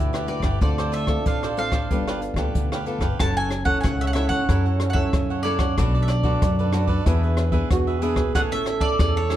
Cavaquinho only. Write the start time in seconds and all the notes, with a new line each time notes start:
Already playing: G4 B4
0.13 G4 B4 D5
0.27 F#4 G4 B4 D5
0.42 G4 B4 D5
0.61 F4 A4 C5 D5
0.78 A4 C5 D5
0.92 F4 A4 C5 D5
1.07 muted cavaquinho stroke
1.26 F4 A4 C5 D5
1.43 A4 C5 D5
1.72 A4 C5 D5
1.91 D4 G4 B4 F5
2.07 G4 B4 F5
2.22 muted cavaquinho stroke
2.36 G4 B4 F5
2.72 G4 B4 F5
2.86 D4 G4 B4 F5
3.00 G4 B4 F5
3.19 E4 A4 C#5 F#5
3.37 A4 C#5 F#5
3.51 muted cavaquinho stroke
3.65 A4 C#5 F#5
4.01 A4 C#5 F#5
4.15 E4 A4 C#5 F#5
4.29 A4 C#5 F#5
4.49 E4 A4 C#5 F#5
4.66 A4 C#5 F#5
4.94 A4 C#5 F#5
5.13 muted cavaquinho stroke
5.30 A4 C#5 F#5
5.44 E4 A4 C#5 F#5
5.59 A4 C#5 F#5
5.78 D4 A4 B4 D5
5.95 A4 B4 D5
6.09 muted cavaquinho stroke
6.23 A4 B4 D5
6.59 A4 B4 D5
6.73 D4 A4 B4 D5
6.87 A4 B4 D5
7.06 D4 G#4 B4 E5
7.23 G#4 B4 E5
7.52 G#4 B4 E5
7.70 muted cavaquinho stroke
7.87 G#4 B4 E5
8.02 D4 G#4 B4 E5
8.16 G#4 B4 E5
8.35 G#4 C#5 E5 A5
8.51 C#5 E5 A5
8.66 muted cavaquinho stroke
8.80 C#5 E5 A5
9.16 C#5 E5 A5
9.29 G#4 C#5 E5 A5